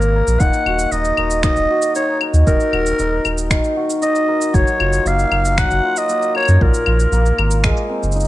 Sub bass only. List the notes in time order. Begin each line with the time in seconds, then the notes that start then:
Already playing: G#1
0.27 A#1
0.40 D#1
0.66 D#1
0.92 D#1
1.18 D#1
1.56 D#1
2.34 D#2
2.47 D#1
2.73 D#1
3.00 D#1
3.25 D#1
4.54 F#1
4.80 F#1
5.06 F#1
5.32 F#1
5.71 F#1
6.49 F#2
6.61 A#1
6.87 A#1
7.12 A#1
7.38 G#1
8.03 F#1